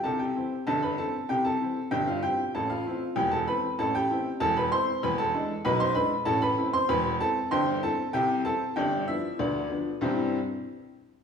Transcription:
X:1
M:2/4
L:1/16
Q:1/4=96
K:C
V:1 name="Upright piano"
[Aa] [Gg]3 [Aa] [Bb] [Aa]2 | [Gg] [Aa]3 [Gg] [Ff] [Gg]2 | [Aa] [Ff]3 [Gg] [Aa] [Bb]2 | [Aa] [Gg]3 [Aa] [Bb] [cc']2 |
[Bb] [Aa]3 [Bb] [cc'] [Bb]2 | [Aa] [Bb]2 [cc'] [Bb]2 [Aa]2 | [cgc']2 [Aa]2 [Geg]2 [Aa]2 | [Gdg]2 [Ee]2 [DBd]4 |
[C,,G,,E,G,CEe]2 z6 |]
V:2 name="Upright piano" clef=bass
[C,,C,]2 [E,CE]2 [G,,,G,,]2 [E,CE]2 | [C,,C,]2 [E,CE]2 [G,,,G,,]2 [E,CE]2 | [A,,,A,,]2 [E,CE]2 [E,,,E,,]2 [E,CE]2 | [A,,,A,,]2 [E,CE]2 [E,,,E,,]2 [E,CE]2 |
[E,,,E,,]2 [^G,DE]2 [B,,,B,,]2 [G,DE]2 | [A,,,A,,]2 [E,CE]2 [E,,,E,,]2 [E,CE]2 | [G,,,G,,]2 [E,CE]2 [C,,C,]2 [E,CE]2 | [G,,,G,,]2 [F,B,D]2 [D,,D,]2 [F,B,D]2 |
z8 |]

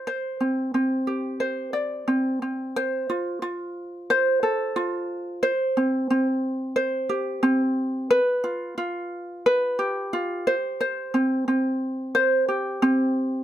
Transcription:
X:1
M:4/4
L:1/8
Q:"Swing 16ths" 1/4=89
K:Flyd
V:1 name="Ukulele"
c C C G c d C C | c F F2 c A F2 | c C C2 c G C2 | B F F2 B G F c |
c C C2 c G C2 |]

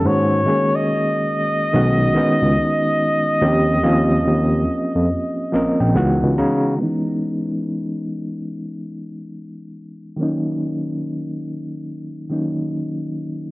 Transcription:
X:1
M:4/4
L:1/16
Q:"Swing 16ths" 1/4=71
K:C#dor
V:1 name="Flugelhorn"
c3 d12- d- | d12 z4 | z16 | z16 |]
V:2 name="Reed electric piano"
z16 | z8 z2 d =g f2 a2 | z16 | z16 |]
V:3 name="Reed electric piano"
[D,G,A,CF]2 [D,G,A,CG]6 [D,G,B,CF]2 [D,G,B,CD]6 | [^E,A,^B,C=G]2 [E,A,B,C^E]6 z2 [E,A,B,CA]2 [=E,^G,=B,DF]4 | [D,E,G,B,CD]16 | [D,F,A,CD]8- [D,F,A,CD]2 [D,F,A,CD]6 |]
V:4 name="Tine electric piano" clef=bass
G,,2 z6 B,,,2 z C,, z4 | D,,2 D,,2 D,,2 z ^E,, z2 A,,, A,,, C,, C,, C,2 | z16 | z16 |]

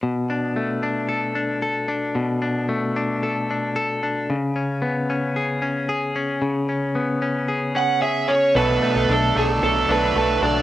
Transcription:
X:1
M:4/4
L:1/16
Q:1/4=113
K:Bdor
V:1 name="Lead electric guitar"
z16 | z16 | z16 | z8 z2 f2 e2 c2 |
B4 A2 G2 A2 B4 d2 |]
V:2 name="Clean electric guitar"
B,,2 D2 A,2 D2 A2 D2 A2 D2 | B,,2 D2 A,2 D2 A2 D2 A2 D2 | C,2 C2 B,2 C2 G2 C2 G2 C2 | C,2 C2 B,2 C2 G2 C2 G2 C2 |
[B,,A]2 A,2 D2 A,2 A2 D2 A,2 D2 |]
V:3 name="Overdriven electric guitar"
z16 | z16 | z16 | z16 |
[B,,F,A,DA]3 [A,DA]3 [F,A,DA]4 [F,A,DA]2 [F,A,DA]4 |]
V:4 name="Fingered electric bass" clef=bass
z16 | z16 | z16 | z16 |
B,,,2 z B,,, B,,,2 B,,,2 B,,,2 B,,,2 B,,,2 B,,,2 |]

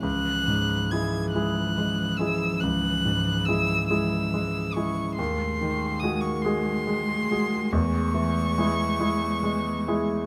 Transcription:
X:1
M:12/8
L:1/16
Q:3/8=47
K:G#phr
V:1 name="Violin"
f'4 g'2 f'4 e'2 f'4 e'2 e'4 c'2 | ^b4 d' c' b6 c'12 |]
V:2 name="Grand piano"
C,,2 G,,2 [G,EG]2 [G,EG]2 G,2 [G,EG]2 C,,2 G,,2 [G,EG]2 [G,EG]2 G,2 [G,EG]2 | D,,2 D,2 [G,FG]2 [G,FG]2 G,2 [G,FG]2 E,,2 E,2 [G,EG]2 [G,EG]2 G,2 [G,EG]2 |]
V:3 name="Cello" clef=bass
E,24 | G,24 |]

